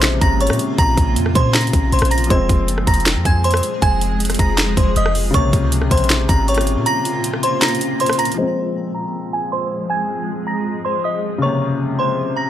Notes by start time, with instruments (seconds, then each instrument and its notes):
Already playing: 808-style bass A#1, ambient pad A#2 A#3 F4, felt piano C3 C#3 A#3, synth bell C5 C6
0.02 finger snap, snare, closed hi-hat
0.21 808-style bass G#1, synth bell A#5 A#6, kick, closed hi-hat
0.41 synth bell C#5 C#6, closed hi-hat
0.47 808-style bass A#2, cross-stick, closed hi-hat
0.53 closed hi-hat
0.59 closed hi-hat
0.78 808-style bass A#1, synth bell A#5 A#6, kick, closed hi-hat
0.97 808-style bass A#1, kick, closed hi-hat
1.16 808-style bass F2, closed hi-hat
1.26 cross-stick
1.35 808-style bass A#2, synth bell C5 C6, kick, closed hi-hat
1.54 synth bell A#5 A#6, finger snap, snare, closed hi-hat
1.61 closed hi-hat
1.67 closed hi-hat
1.73 808-style bass A#1, kick, closed hi-hat
1.92 808-style bass A#1, synth bell C5 C6, closed hi-hat
1.99 808-style bass A#1, cross-stick, closed hi-hat
2.05 closed hi-hat
2.11 synth bell A#5 A#6, closed hi-hat, open hi-hat
2.18 closed hi-hat
2.24 felt piano F3, closed hi-hat
2.30 808-style bass F1, ambient pad F3 G#3 G#4, felt piano G#3 C4, synth bell C5 C6, kick, closed hi-hat
2.49 808-style bass F1, kick, closed hi-hat
2.68 808-style bass F#1, closed hi-hat
2.78 cross-stick
2.87 808-style bass F1, synth bell A#5 A#6, kick, closed hi-hat
2.94 closed hi-hat
3.00 closed hi-hat
3.06 finger snap, snare, closed hi-hat
3.16 808-style bass F2
3.25 808-style bass F2, synth bell G#5 G#6, kick, closed hi-hat
3.44 synth bell C5 C6, closed hi-hat
3.51 cross-stick, closed hi-hat
3.57 closed hi-hat
3.63 closed hi-hat
3.82 808-style bass F1, synth bell G#5 G#6, kick, closed hi-hat
4.01 closed hi-hat
4.20 closed hi-hat
4.25 closed hi-hat
4.30 cross-stick, closed hi-hat
4.34 closed hi-hat
4.39 808-style bass F1, synth bell A#5 A#6, kick, closed hi-hat
4.58 finger snap, snare, closed hi-hat
4.77 808-style bass F1, synth bell C5 C6, kick, closed hi-hat
4.96 808-style bass F1, synth bell D#5 D#6, closed hi-hat
5.06 cross-stick
5.15 open hi-hat
5.31 808-style bass A#1, ambient pad A#2 A#3 F4, felt piano C#3 A#3, synth bell C#6, kick, closed hi-hat
5.35 felt piano C3, synth bell C#5
5.53 808-style bass C#2, kick, closed hi-hat
5.72 closed hi-hat
5.82 cross-stick
5.91 808-style bass A#1, synth bell C5 C6, kick, closed hi-hat
5.97 closed hi-hat
6.04 closed hi-hat
6.10 finger snap, snare, closed hi-hat
6.29 808-style bass G#1, synth bell A#5 A#6, kick, closed hi-hat
6.48 synth bell C#5 C#6, closed hi-hat
6.54 cross-stick, closed hi-hat
6.61 closed hi-hat
6.67 closed hi-hat
6.77 808-style bass A#2
6.86 synth bell A#5 A#6, closed hi-hat
7.05 closed hi-hat
7.24 closed hi-hat
7.34 cross-stick
7.43 synth bell C5 C6, closed hi-hat
7.62 synth bell A#5 A#6, finger snap, snare, closed hi-hat
7.68 closed hi-hat
7.75 closed hi-hat
7.81 closed hi-hat
8.00 synth bell C5 C6, closed hi-hat
8.06 cross-stick, closed hi-hat
8.13 closed hi-hat
8.19 synth bell A#5 A#6, closed hi-hat, open hi-hat
8.25 closed hi-hat
8.32 felt piano F3, closed hi-hat
8.38 ambient pad F3 G#3 G#4, felt piano G#3 C4, synth bell C5
8.95 synth bell A#5 A#6
9.33 synth bell G#5 G#6
9.52 synth bell C5 C6
9.90 synth bell G#5 G#6
10.47 synth bell A#5 A#6
10.85 synth bell C5 C6
11.04 synth bell D#5 D#6
11.38 ambient pad A#2 A#3 F4, felt piano C#3 A#3, synth bell C#6
11.43 felt piano C3, synth bell C#5
11.99 synth bell C5 C6
12.36 synth bell A#5 A#6